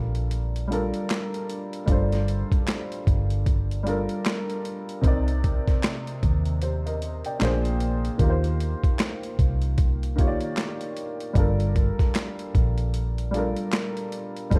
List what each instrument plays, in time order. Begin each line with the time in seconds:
Already playing: fingered electric bass A#1, upright piano G3 D4 F4 A4 A#4
0.15 closed hi-hat
0.31 closed hi-hat
0.56 closed hi-hat
0.68 upright piano G3 D4 F4
0.72 upright piano A4 A#4, closed hi-hat
0.94 closed hi-hat
1.10 snare, clap, closed hi-hat
1.34 closed hi-hat
1.50 closed hi-hat
1.73 closed hi-hat
1.86 fingered electric bass G1, upright piano G3 D4 F4, kick, closed hi-hat
1.90 upright piano A4 C5
2.12 snare, closed hi-hat
2.28 closed hi-hat
2.52 kick, closed hi-hat
2.68 snare, clap, closed hi-hat
2.92 closed hi-hat
3.07 fingered electric bass G1, kick, closed hi-hat
3.30 closed hi-hat
3.46 kick, closed hi-hat
3.71 closed hi-hat
3.83 upright piano G3 D4 F4, closed hi-hat
3.87 upright piano A4 A#4
4.09 closed hi-hat
4.26 snare, clap, closed hi-hat
4.50 closed hi-hat
4.65 closed hi-hat
4.89 closed hi-hat
5.01 fingered electric bass C2, upright piano C3 C4 D#4, kick, closed hi-hat
5.06 upright piano A#4 D5
5.28 closed hi-hat
5.44 kick, closed hi-hat
5.68 kick, snare, closed hi-hat
5.83 snare, clap, closed hi-hat
6.07 closed hi-hat
6.23 fingered electric bass D#2, kick, closed hi-hat
6.45 closed hi-hat
6.62 upright piano G4 C5, closed hi-hat
6.86 upright piano A#4 D#5, closed hi-hat
7.02 closed hi-hat
7.25 upright piano D5 G5, closed hi-hat
7.39 fingered electric bass A#1, upright piano A#2 A#3 D4 G#4, snare, clap, closed hi-hat
7.44 upright piano C5
7.65 closed hi-hat
7.80 closed hi-hat
8.05 closed hi-hat
8.18 fingered electric bass D#2, upright piano D#3 A#3 F4, kick, closed hi-hat
8.22 upright piano G4 A#4
8.30 upright piano C5
8.44 closed hi-hat
8.60 closed hi-hat
8.84 kick, closed hi-hat
8.99 snare, clap, closed hi-hat
9.23 closed hi-hat
9.39 fingered electric bass C2, kick, closed hi-hat
9.62 closed hi-hat
9.78 kick, closed hi-hat
10.03 closed hi-hat
10.16 upright piano D#3 A#3 F4, kick, closed hi-hat
10.20 upright piano G4 C#5
10.27 upright piano D5
10.41 closed hi-hat
10.57 snare, clap, closed hi-hat
10.81 closed hi-hat
10.97 closed hi-hat
11.20 closed hi-hat
11.33 fingered electric bass G1, upright piano G3 D4 F4, kick, closed hi-hat
11.38 upright piano A4 A#4
11.60 closed hi-hat
11.76 kick, closed hi-hat
11.99 kick, snare, closed hi-hat
12.15 snare, clap, closed hi-hat
12.39 closed hi-hat
12.55 fingered electric bass A#1, kick, closed hi-hat
12.78 closed hi-hat
12.94 closed hi-hat
13.18 closed hi-hat
13.31 upright piano G3 D4 F4, closed hi-hat
13.35 upright piano A4 A#4
13.57 closed hi-hat
13.72 snare, clap, closed hi-hat
13.97 closed hi-hat
14.12 closed hi-hat
14.37 closed hi-hat
14.50 fingered electric bass G1, upright piano G3 D4 F4, kick, closed hi-hat
14.54 upright piano A4 C5